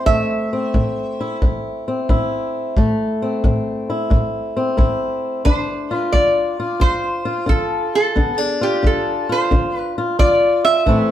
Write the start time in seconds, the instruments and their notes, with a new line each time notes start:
Already playing: steel-string acoustic guitar C4 E4
0.06 steel-string acoustic guitar A2 A3, resonator guitar played with a steel bar E5, kick
0.53 steel-string acoustic guitar C4
0.74 steel-string acoustic guitar A2, kick
1.21 steel-string acoustic guitar E4
1.42 steel-string acoustic guitar A2, kick
1.88 steel-string acoustic guitar C4
2.09 steel-string acoustic guitar A2 E4, kick
2.77 steel-string acoustic guitar A2 A3, kick
3.22 steel-string acoustic guitar C4
3.44 steel-string acoustic guitar A2, kick
3.90 steel-string acoustic guitar E4
4.10 steel-string acoustic guitar A2, kick
4.57 steel-string acoustic guitar C4
4.77 steel-string acoustic guitar A2 E4, kick
5.45 steel-string acoustic guitar D3 D4, resonator guitar played with a steel bar C5, kick
5.91 steel-string acoustic guitar F4
5.95 resonator guitar played with a steel bar B4
6.12 steel-string acoustic guitar D3, resonator guitar played with a steel bar D5, kick
6.60 steel-string acoustic guitar F4
6.80 steel-string acoustic guitar D3, resonator guitar played with a steel bar C5, kick
7.25 steel-string acoustic guitar F4
7.46 steel-string acoustic guitar D3 F4, resonator guitar played with a steel bar A4, kick
7.95 resonator guitar played with a steel bar A4
8.15 steel-string acoustic guitar D3 B3, kick
8.38 steel-string acoustic guitar D4, resonator guitar played with a steel bar G#4
8.61 steel-string acoustic guitar F4, resonator guitar played with a steel bar G4
8.83 steel-string acoustic guitar D3, resonator guitar played with a steel bar A4, kick
9.29 steel-string acoustic guitar F4, resonator guitar played with a steel bar C5
9.51 steel-string acoustic guitar D3, kick
9.76 resonator guitar played with a steel bar B4
9.98 steel-string acoustic guitar F4
10.19 steel-string acoustic guitar D3 F4, resonator guitar played with a steel bar D5, kick
10.65 resonator guitar played with a steel bar E5
10.86 steel-string acoustic guitar A2 E3 A3 C4 E4, kick